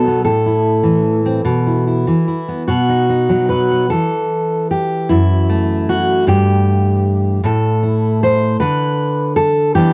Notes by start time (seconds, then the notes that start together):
Already playing: B2 F#3 D#4 A4
0.07 B3
0.24 A2 A4
0.46 E4
0.83 E3
1.26 C4
1.45 B2
1.67 E4
1.87 E4
2.07 E3
2.28 E4
2.48 B3
2.68 B2 F#4
2.89 D#4
3.09 D#4
3.29 F#3
3.49 F#4 B4
3.71 B3
3.90 E3 A4
4.71 G4
5.09 F#2 E4
5.49 A3
5.89 F#4
6.27 G2 G4
7.44 A2 A4
7.83 E4
8.23 C5
8.60 D3 B4
9.36 A4
9.75 E3 B3 D4 G4